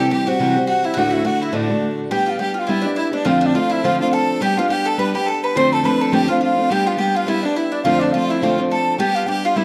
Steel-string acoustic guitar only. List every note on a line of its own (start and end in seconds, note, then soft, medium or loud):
0.00 0.11 C3 medium
0.00 0.10 G3 medium
0.00 0.11 C4 medium
0.00 0.12 G4 medium
0.10 0.27 E3 medium
0.10 0.27 G3 medium
0.10 0.26 C4 medium
0.10 0.25 G4 medium
0.27 0.39 G3 soft
0.27 0.39 C4 medium
0.27 0.40 G4 medium
0.39 0.56 C3 medium
0.39 0.56 E3 loud
0.39 0.56 G3 loud
0.39 0.56 C4 medium
0.39 0.55 G4 medium
0.56 0.97 G3 soft
0.56 0.98 C4 soft
0.56 0.97 G4 medium
0.96 1.25 D2 medium
0.96 1.26 A2 medium
0.96 1.23 D3 medium
0.96 1.23 A3 medium
0.96 1.25 D4 medium
0.96 1.25 F#4 medium
1.24 1.52 D3 medium
1.24 1.52 A3 medium
1.24 1.53 D4 medium
1.24 1.53 F#4 medium
1.52 1.69 D2 medium
1.52 1.70 A2 medium
1.52 1.70 D3 medium
1.52 1.70 A3 medium
1.52 1.69 D4 medium
1.52 1.67 F#4 loud
1.69 2.10 D3 soft
1.69 2.11 A3 soft
1.69 2.12 D4 soft
1.69 2.11 F#4 soft
2.11 2.38 G3 medium
2.11 2.39 B3 medium
2.11 2.40 D4 medium
2.11 2.40 G4 medium
2.39 2.68 G3 medium
2.39 2.68 B3 medium
2.39 2.69 D4 medium
2.39 2.69 G4 medium
2.69 2.85 G3 medium
2.69 2.84 B3 medium
2.69 2.83 D4 medium
2.69 2.82 G4 medium
2.83 3.13 B3 soft
2.83 3.13 D4 soft
2.83 3.10 G4 medium
3.11 3.25 B3 soft
3.11 3.25 D4 medium
3.11 3.25 G4 medium
3.25 3.54 F2 medium
3.25 3.58 D3 medium
3.25 3.53 F3 medium
3.25 3.55 A3 loud
3.25 3.54 C4 medium
3.25 3.56 D4 loud
3.54 3.83 F3 medium
3.54 3.84 A3 medium
3.54 3.83 C4 medium
3.54 3.84 D4 medium
3.83 4.00 F2 medium
3.83 4.00 D3 medium
3.83 4.00 F3 loud
3.83 4.00 A3 medium
3.83 4.00 C4 medium
3.83 3.99 D4 medium
4.00 4.40 F3 soft
4.00 4.42 A3 soft
4.00 4.41 C4 soft
4.00 4.43 D4 soft
4.41 4.57 G3 medium
4.41 4.57 B3 medium
4.41 4.57 D4 medium
4.41 4.56 G4 loud
4.57 4.69 B3 soft
4.57 4.69 D4 soft
4.57 4.70 G4 medium
4.69 4.97 G3 medium
4.69 4.97 B3 medium
4.69 4.98 D4 medium
4.69 4.99 G4 medium
4.98 5.14 G3 medium
4.98 5.14 B3 medium
4.98 5.14 D4 medium
4.98 5.13 G4 medium
5.14 5.56 B3 soft
5.14 5.56 D4 soft
5.14 5.55 G4 medium
5.55 5.84 F2 medium
5.55 5.87 D3 medium
5.55 5.82 F3 medium
5.55 5.84 A3 medium
5.55 5.83 C4 medium
5.55 5.85 D4 medium
5.83 6.11 F3 medium
5.83 6.12 A3 medium
5.83 6.12 C4 medium
5.83 6.13 D4 medium
6.12 6.28 F2 medium
6.12 6.28 D3 medium
6.12 6.28 F3 medium
6.12 6.28 A3 medium
6.12 6.28 C4 medium
6.12 6.27 D4 medium
6.28 6.58 F3 soft
6.28 6.57 A3 soft
6.28 6.58 C4 soft
6.28 6.56 D4 medium
6.57 6.70 F3 soft
6.57 6.70 A3 soft
6.57 6.70 C4 soft
6.57 6.70 D4 medium
6.70 6.96 G3 medium
6.70 6.97 B3 medium
6.70 6.99 D4 loud
6.70 6.99 G4 medium
6.97 7.25 G3 medium
6.97 7.26 B3 medium
6.97 7.27 D4 medium
6.97 7.27 G4 medium
7.26 7.43 G3 medium
7.26 7.43 B3 medium
7.26 7.44 D4 medium
7.26 7.42 G4 medium
7.43 7.85 B3 soft
7.43 7.85 D4 soft
7.43 7.84 G4 soft
7.84 8.13 F2 medium
7.84 8.17 D3 medium
7.84 8.12 F3 medium
7.84 8.13 A3 medium
7.84 8.13 C4 medium
7.84 8.15 D4 medium
8.13 8.42 F3 medium
8.13 8.42 A3 medium
8.13 8.41 C4 medium
8.13 8.42 D4 medium
8.41 8.58 F2 medium
8.41 8.58 D3 medium
8.41 8.58 F3 medium
8.41 8.58 A3 medium
8.41 8.58 C4 medium
8.41 8.56 D4 medium
8.58 8.98 F3 soft
8.58 8.99 A3 medium
8.58 8.99 C4 soft
8.58 9.00 D4 medium
8.98 9.25 G3 medium
8.98 9.27 B3 medium
8.98 9.28 D4 medium
8.98 9.28 G4 medium
9.26 9.55 G3 medium
9.26 9.55 B3 medium
9.26 9.57 D4 medium
9.26 9.57 G4 medium
9.56 9.64 G3 medium
9.56 9.64 B3 medium
9.56 9.64 D4 loud
9.56 9.64 G4 medium